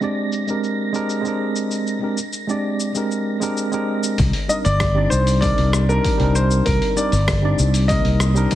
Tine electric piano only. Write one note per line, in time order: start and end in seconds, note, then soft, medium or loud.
0.00 0.44 G#3 medium
0.00 0.44 C4 medium
0.00 0.44 D4 medium
0.00 0.45 G4 medium
0.00 0.45 D5 medium
0.47 0.90 G#3 medium
0.47 0.91 C4 medium
0.47 0.91 D4 medium
0.47 0.92 G4 medium
0.47 0.92 A#4 medium
0.93 1.20 G#3 medium
0.93 1.21 C4 medium
0.93 1.21 D4 medium
0.93 1.22 G4 medium
0.93 1.22 A#4 medium
1.22 1.97 G#3 medium
1.22 1.98 C4 medium
1.22 1.99 D4 medium
1.26 1.99 G4 medium
1.26 2.00 A#4 medium
2.01 2.17 G#3 medium
2.01 2.17 C4 medium
2.01 2.18 D4 medium
2.01 2.18 G4 medium
2.01 2.18 A#4 medium
2.47 2.91 G#3 medium
2.47 2.91 C4 medium
2.47 2.92 D4 medium
2.47 2.92 G4 medium
2.47 2.92 D5 medium
2.94 3.37 G#3 medium
2.94 3.38 C4 medium
2.94 3.38 D4 medium
2.94 3.39 G4 medium
2.94 3.39 A#4 medium
3.40 3.68 G#3 medium
3.40 3.69 C4 medium
3.40 3.69 D4 medium
3.40 3.69 G4 medium
3.40 3.70 A#4 medium
3.71 4.16 G#3 medium
3.71 4.17 C4 medium
3.71 4.17 D4 medium
3.71 4.17 G4 medium
3.71 4.18 A#4 medium
4.48 4.64 G3 medium
4.48 4.65 C4 medium
4.48 4.65 D4 medium
4.48 4.66 D#4 medium
4.48 4.66 A#4 medium
4.95 5.38 G3 medium
4.95 5.38 C4 medium
4.95 5.39 D4 medium
4.95 5.39 D#4 medium
4.95 5.40 D5 loud
5.41 5.85 G3 medium
5.41 5.85 C4 medium
5.41 5.86 D4 medium
5.41 5.86 D#4 medium
5.41 5.86 A#4 medium
5.89 6.16 G3 medium
5.89 6.16 C4 medium
5.89 6.17 D4 medium
5.89 6.17 D#4 medium
5.89 6.18 A#4 loud
6.17 6.92 G3 medium
6.17 6.93 C4 medium
6.17 6.94 D4 medium
6.22 6.95 D#4 medium
6.22 6.95 A#4 loud
6.96 7.12 G3 medium
6.96 7.12 C4 medium
6.96 7.12 D4 medium
6.96 7.13 D#4 medium
6.96 7.13 A#4 medium
7.42 7.85 G3 medium
7.42 7.86 C4 medium
7.42 7.86 D4 medium
7.42 7.87 D#4 medium
7.42 7.87 D5 loud
7.89 8.32 G3 medium
7.89 8.33 A#3 medium
7.89 8.32 C4 medium
7.89 8.33 D#4 medium
7.89 8.34 A#4 medium
8.35 8.55 G3 medium
8.35 8.55 C4 medium
8.35 8.55 D4 medium
8.35 8.55 D#4 medium
8.35 8.55 A#4 loud